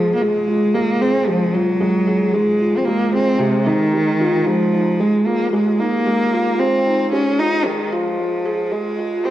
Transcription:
0.00 0.30 F2 loud
0.00 0.14 F3 loud
0.00 0.21 G#3 medium
0.00 0.48 F4 medium
0.00 0.20 G#4 medium
0.15 0.24 A#3 medium
0.21 0.47 G#3 medium
0.21 0.76 G#3 loud
0.48 1.10 C2 medium
0.48 0.73 F4 medium
0.74 0.90 G#3 medium
0.74 1.03 A#3 medium
1.01 1.29 C4 loud
1.01 1.27 G#4 medium
1.28 2.30 F2 loud
1.28 1.55 F3 loud
1.28 1.53 G#3 medium
1.54 2.35 F#3 medium
1.54 1.80 F4 medium
1.81 2.06 G#3 medium
2.07 2.23 G#4 medium
2.34 2.74 G#2 loud
2.34 2.59 G#3 medium
2.34 2.79 G#3 loud
2.61 2.76 F4 medium
2.74 2.85 F2 medium
2.74 2.87 C4 medium
2.85 3.36 C2 loud
2.85 3.13 G#3 medium
2.85 3.14 A#3 medium
3.12 3.40 C4 loud
3.12 3.29 G#4 medium
3.39 4.55 D#2 loud
3.39 3.68 C3 medium
3.39 3.66 G#3 medium
3.66 4.48 D#3 medium
3.66 3.92 D#4 loud
3.93 4.19 G#3 medium
4.20 4.45 F4 medium
4.46 5.02 F3 medium
4.46 4.72 G#3 medium
4.73 5.35 A#1 medium
4.73 4.99 D#4 medium
5.00 5.15 G#3 medium
5.00 5.28 G#3 loud
5.26 5.53 A#3 medium
5.26 5.52 F4 medium
5.53 6.55 D#2 loud
5.53 5.78 G#3 loud
5.53 5.81 G#3 medium
5.80 6.61 A#3 loud
5.80 6.05 D#4 medium
6.06 6.32 G#3 loud
6.33 6.48 F4 medium
6.59 7.61 D#2 loud
6.59 6.85 G#3 medium
6.59 7.12 C4 loud
6.86 7.01 D#4 medium
7.13 7.38 G#3 medium
7.13 7.41 C#4 medium
7.39 7.67 D#4 loud
7.39 7.54 F4 medium
7.65 8.80 C#2 loud
7.65 7.93 D#3 medium
7.65 7.91 G#3 loud
7.92 8.73 F3 medium
7.92 8.17 F4 loud
8.18 8.44 G#3 medium
8.45 8.70 G#4 medium
8.71 9.27 G#3 loud
8.71 8.97 G#3 medium
8.98 9.24 F4 medium
9.25 9.30 G#3 loud
9.25 9.30 C4 loud

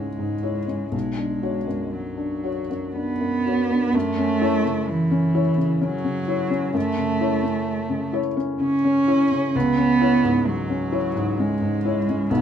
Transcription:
0.00 0.88 C#2 soft
0.00 0.18 G#2 soft
0.00 0.93 G#3 medium
0.00 0.67 C#4 soft
0.00 0.43 E4 soft
0.00 0.43 C#5 soft
0.18 0.58 G#2 soft
0.43 0.66 E4 soft
0.43 0.65 C#5 soft
0.67 0.93 C#4 soft
0.92 3.90 B1 soft
0.92 1.95 G#3 medium
1.17 1.57 D4 soft
1.42 1.65 F#4 soft
1.42 1.65 C#5 soft
1.67 2.49 F#2 soft
1.94 2.95 F#3 soft
2.17 2.59 D4 soft
2.43 2.67 F#4 soft
2.43 2.67 C#5 soft
2.70 3.11 F#2 soft
2.95 3.96 B3 medium
2.95 3.36 D4 soft
3.20 3.60 F#2 soft
3.46 3.68 F#4 soft
3.46 3.68 C#5 soft
3.70 3.94 D4 soft
3.94 6.71 F#2 medium
3.94 4.91 A3 loud
4.18 4.56 C#4 medium
4.41 4.63 E4 medium
4.41 4.63 C#5 medium
4.65 5.40 C#3 soft
4.89 5.85 E3 medium
5.11 5.49 C#4 medium
5.35 5.56 E4 soft
5.35 5.56 C#5 soft
5.57 5.95 C#3 medium
5.81 6.76 F#3 medium
5.81 6.19 C#4 medium
6.05 6.42 C#3 medium
6.28 6.49 E4 soft
6.28 6.49 C#5 soft
6.50 6.88 C#4 medium
6.73 9.50 F#2 medium
6.73 8.12 A3 loud
6.98 7.35 C#3 soft
7.20 7.42 E4 medium
7.20 7.42 C#5 medium
7.43 8.18 C#4 soft
7.90 8.28 C#3 medium
8.13 8.35 E4 soft
8.13 8.35 C#5 medium
8.37 8.75 C#4 medium
8.60 8.98 C#3 soft
8.60 9.57 C#4 medium
8.84 9.22 C#4 soft
9.07 9.29 E4 soft
9.07 9.29 C#5 soft
9.32 9.55 C#3 medium
9.55 12.26 C#2 medium
9.55 10.49 B3 medium
9.78 10.14 C#4 soft
10.01 10.21 E4 soft
10.01 10.21 C#5 medium
10.23 10.96 G#2 soft
10.47 11.40 F#3 medium
10.70 11.06 C#4 medium
10.92 11.12 E4 soft
10.92 11.13 C#5 medium
11.16 11.52 G#2 soft
11.38 12.31 G#3 medium
11.38 11.75 C#4 soft
11.61 11.98 G#2 medium
11.85 12.05 E4 soft
11.85 12.05 C#5 soft
12.09 12.31 C#4 soft
12.30 12.41 B1 medium
12.30 12.41 B3 loud

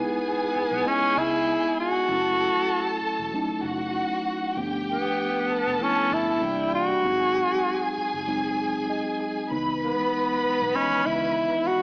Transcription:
0.00 0.45 G#3 medium
0.00 0.46 B3 medium
0.00 0.89 B3 medium
0.00 0.46 D#4 medium
0.00 0.46 E4 medium
0.00 2.05 G#4 medium
0.00 2.05 G#5 medium
0.10 muted fingered electric bass stroke soft
0.56 muted fingered electric bass stroke soft
0.72 0.83 B1 medium
0.84 1.69 G#3 medium
0.84 1.70 B3 medium
0.84 1.19 C#4 medium
0.84 1.70 E4 medium
0.84 1.70 D#5 soft
1.02 muted fingered electric bass stroke soft
1.17 1.56 C#2 medium
1.17 1.79 E4 medium
1.80 2.99 F#4 medium
2.08 2.48 F#1 medium
2.08 2.93 F#3 medium
2.08 2.93 A3 medium
2.08 2.94 C#4 medium
2.08 2.94 E4 medium
2.08 3.61 A4 medium
2.08 3.61 A5 medium
2.57 muted fingered electric bass stroke soft
3.02 muted fingered electric bass stroke soft
3.19 3.31 E1 medium
3.33 4.17 F#3 medium
3.33 4.17 A3 medium
3.33 4.18 C#4 medium
3.33 4.18 D#4 medium
3.49 muted fingered electric bass stroke soft
3.63 4.03 F#1 medium
3.63 4.55 F#4 medium
3.63 4.54 F#5 medium
4.56 4.96 G1 medium
4.56 5.41 F3 medium
4.56 5.41 A3 medium
4.56 5.41 B3 medium
4.56 4.64 C#4 medium
4.56 5.48 G4 medium
4.56 5.48 G5 medium
4.64 5.45 D4 medium
4.91 5.84 B3 medium
5.05 muted fingered electric bass stroke soft
5.50 6.41 A4 medium
5.50 6.41 A5 medium
5.50 muted fingered electric bass stroke soft
5.67 5.79 F1 medium
5.79 6.42 F3 medium
5.79 6.42 A3 medium
5.79 6.43 B3 medium
5.79 6.15 C#4 medium
5.79 6.43 E4 medium
5.98 muted fingered electric bass stroke soft
6.11 6.37 G1 medium
6.11 6.74 E4 medium
6.41 6.93 C2 medium
6.41 6.92 E3 medium
6.41 6.93 G3 medium
6.41 7.04 G3 medium
6.41 6.93 A#3 medium
6.41 6.93 D4 medium
6.41 7.04 G5 medium
6.75 7.94 F#4 medium
7.03 7.44 G#1 medium
7.03 7.88 F#3 medium
7.03 7.88 G#3 medium
7.03 7.88 C4 medium
7.03 7.89 D#4 medium
7.03 9.48 G#4 medium
7.03 9.48 G#5 medium
7.53 muted fingered electric bass stroke soft
7.98 muted fingered electric bass stroke soft
8.14 9.03 F#1 medium
8.27 9.12 F#3 medium
8.27 9.12 G#3 medium
8.27 9.12 C4 medium
8.27 9.13 D#4 medium
8.90 9.19 D#5 medium
9.20 9.49 G#5 medium
9.50 9.91 C#2 medium
9.50 9.58 D#3 medium
9.50 10.36 G#3 medium
9.50 10.36 B3 medium
9.50 10.36 D#4 medium
9.50 11.82 B4 medium
9.50 11.82 B5 medium
9.57 10.39 E3 medium
9.85 10.77 B3 medium
10.00 muted fingered electric bass stroke soft
10.45 muted fingered electric bass stroke soft
10.62 10.73 B1 medium
10.75 10.82 D#3 soft
10.75 11.59 G#3 medium
10.75 11.60 B3 medium
10.75 11.07 C#4 medium
10.75 11.60 D#5 medium
10.81 11.63 E3 medium
10.92 muted fingered electric bass stroke soft
11.06 11.46 C#2 medium
11.06 11.69 E4 medium
11.68 11.82 F#4 medium

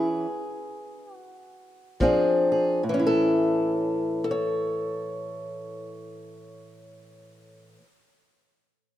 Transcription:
0.00 0.25 A2 medium
0.00 0.26 E3 medium
0.00 0.26 C#4 soft
0.00 1.14 G#4 medium
1.14 2.00 F#4 medium
2.00 2.79 A#2 medium
2.00 2.82 F3 medium
2.00 2.82 C4 medium
2.00 2.82 D4 medium
2.00 2.51 G#4 medium
2.00 kick medium
2.52 2.81 G#4 medium
2.83 7.77 A2 medium
2.89 7.82 E3 medium
2.94 4.24 C#4 medium
2.99 4.30 E4 medium
3.07 4.23 A4 medium
4.24 7.80 A4 medium
4.31 7.84 C#5 medium

